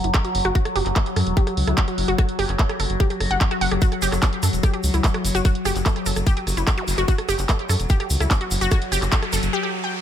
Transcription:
Already playing: F#3
0.04 F#1 E4, closed hi-hat
0.14 kick, cross-stick, clap, closed hi-hat
0.25 F#4, closed hi-hat
0.35 F#1, open hi-hat
0.45 F#1 F#4, cross-stick, closed hi-hat
0.55 F#4, kick, closed hi-hat
0.65 cross-stick, closed hi-hat
0.76 F#1 G4, open hi-hat
0.86 F#1, clap, closed hi-hat
0.96 A4, kick, cross-stick, clap, closed hi-hat
1.06 closed hi-hat
1.16 F#2 A4, cross-stick, open hi-hat
1.27 E1, closed hi-hat
1.37 G4, kick, closed hi-hat
1.47 G4, cross-stick, closed hi-hat
1.57 C#2, open hi-hat
1.67 C#2 E4, cross-stick, closed hi-hat
1.78 kick, clap, closed hi-hat
1.88 F#4, closed hi-hat
1.98 F#1, open hi-hat
2.08 F#1 F#4, closed hi-hat
2.18 F#4, kick, cross-stick, closed hi-hat
2.29 closed hi-hat
2.39 F#1 G4, open hi-hat
2.49 F#1, cross-stick, clap, closed hi-hat
2.59 A4, kick, clap, closed hi-hat
2.69 cross-stick, closed hi-hat
2.80 F#1 A4, open hi-hat
2.90 F#1, closed hi-hat
3.00 G4, kick, cross-stick, closed hi-hat
3.10 G4, closed hi-hat
3.20 F#1, cross-stick, open hi-hat
3.31 F#1 F#5, closed hi-hat
3.41 F#5, kick, clap, closed hi-hat
3.51 F#4, cross-stick, closed hi-hat
3.61 F#1 F#5, open hi-hat
3.71 F#1 G4, cross-stick, closed hi-hat
3.82 F#4, kick, closed hi-hat, shaker
3.92 cross-stick, closed hi-hat
4.02 F#1 G4, open hi-hat, shaker
4.12 F#1, cross-stick, clap, closed hi-hat, shaker
4.22 A4, kick, clap, closed hi-hat, shaker
4.33 closed hi-hat
4.43 F#2 A4, cross-stick, open hi-hat, shaker
4.53 E1, closed hi-hat, shaker
4.63 G4, kick, cross-stick, closed hi-hat, shaker
4.74 G4, closed hi-hat
4.83 C#2, open hi-hat, shaker
4.94 C#2 E4, cross-stick, closed hi-hat, shaker
5.04 kick, clap, closed hi-hat, shaker
5.14 F#4, cross-stick, closed hi-hat
5.25 F#1, open hi-hat, shaker
5.35 F#1 F#4, closed hi-hat, shaker
5.45 F#4, kick, cross-stick, closed hi-hat, shaker
5.55 closed hi-hat
5.65 F#1 G4, cross-stick, open hi-hat, shaker
5.76 F#1, clap, closed hi-hat, shaker
5.86 A4, kick, clap, closed hi-hat, shaker
5.96 cross-stick, closed hi-hat
6.06 F#1 A4, open hi-hat, shaker
6.16 F#1, cross-stick, closed hi-hat, shaker
6.26 G4, kick, closed hi-hat, shaker
6.37 G4, closed hi-hat
6.47 F#1, cross-stick, open hi-hat, shaker
6.57 F#1 E4, closed hi-hat, shaker
6.67 kick, cross-stick, clap, closed hi-hat, shaker
6.78 F#4, closed hi-hat, zap
6.88 F#1, open hi-hat, shaker
6.98 F#1 F#4, cross-stick, closed hi-hat, shaker
7.08 F#4, kick, closed hi-hat, riser, shaker
7.18 cross-stick, closed hi-hat
7.29 F#1 G4, open hi-hat, shaker
7.38 F#1, clap, closed hi-hat, shaker
7.49 A4, kick, cross-stick, clap, closed hi-hat, shaker
7.59 closed hi-hat
7.69 F#2 A4, cross-stick, open hi-hat, shaker
7.80 E1, closed hi-hat, shaker
7.89 G4, kick, closed hi-hat, shaker
8.00 G4, cross-stick, closed hi-hat
8.10 C#2, open hi-hat, shaker
8.20 C#2 E4, cross-stick, closed hi-hat, shaker
8.31 kick, clap, closed hi-hat, shaker
8.41 F#4, closed hi-hat
8.51 F#1, open hi-hat, shaker
8.61 F#1 F#4, closed hi-hat, shaker
8.71 F#4, kick, cross-stick, closed hi-hat, shaker
8.82 closed hi-hat
8.92 F#1 G4, open hi-hat, shaker
9.02 F#1, cross-stick, clap, closed hi-hat, shaker
9.12 A4, kick, clap, closed hi-hat, shaker
9.23 cross-stick, closed hi-hat
9.33 F#1 A4, open hi-hat, shaker
9.43 F#1, closed hi-hat, shaker
9.53 G4
9.63 G4
9.84 G5

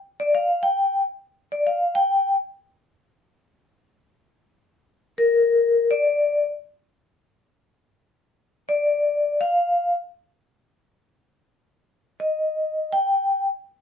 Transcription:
0.20 D5
0.35 F5
0.63 G5
1.52 D5
1.67 F5
1.95 G5
5.18 A#4
5.91 D5
8.69 D5
9.41 F5
12.20 D#5
12.92 G5

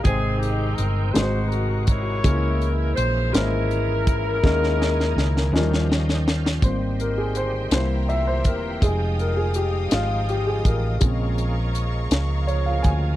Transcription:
0.04 G#1 C3 D#3 G#3 B3 C4 D#4 G#4 C5 G5, kick, closed hi-hat
0.12 C4
0.38 G4
0.43 closed hi-hat
0.75 A#4, closed hi-hat
0.79 G1
1.12 G#1 G#2 C3 G#3 C4 D#4 F#4 B4 C5, closed hi-hat
1.16 snare
1.22 C5
1.48 A#4, closed hi-hat
1.86 E4 A#4 C#5, kick, closed hi-hat
2.23 C#2 C#3 E3 G#3 A#3 C#4 D#4 G4 A#4, kick, closed hi-hat
2.30 E4 G#4
2.62 closed hi-hat
2.95 A#1 C5, closed hi-hat
3.33 G#1 G#3 A#3 C#4 D#4 E4 A#4 C5, snare, closed hi-hat
3.41 E4
3.71 closed hi-hat
4.07 kick, closed hi-hat
4.43 D#2 D#3 G#3 A#3 C#4 G#4 A#4 D#5, kick, snare
4.64 snare
4.82 snare
5.00 snare
5.16 C#2, snare
5.37 snare
5.51 D#2 D#3 F3 C#4 F#4 A#4 D#5
5.56 G3 G4, snare
5.74 snare
5.89 D#5, snare
6.09 snare
6.27 F5, snare
6.46 snare
6.61 G#1 D#3 G3 A#3 C4 F#4 C5 D#5 G5 C6, kick, closed hi-hat
6.68 G4
7.00 A#4, closed hi-hat
7.18 G#4
7.35 C5, closed hi-hat
7.70 C2 E3 G3 A#3 C4 E4 G4 C5 E5 A#5, snare, closed hi-hat
8.09 E5, closed hi-hat
8.27 C5
8.45 E1 A#4, kick, closed hi-hat
8.81 F1 F3 G#3 D#4 G4 G#4 D#5 F5 G5 D#6, kick, closed hi-hat
9.19 A#4, closed hi-hat
9.37 G#4
9.54 G4, closed hi-hat
9.91 G#1 F4, snare, closed hi-hat
10.29 G4, closed hi-hat
10.47 G#4
10.65 A1 A#4, kick, closed hi-hat
11.00 A#1 C#3 F3 G#3 A#3 C4 G#4 F5 A#5 C#6, kick, closed hi-hat
11.38 closed hi-hat
11.75 closed hi-hat
12.11 C#2, snare, closed hi-hat
12.47 C#5, closed hi-hat
12.66 F5
12.82 D2 G#5, kick, closed hi-hat

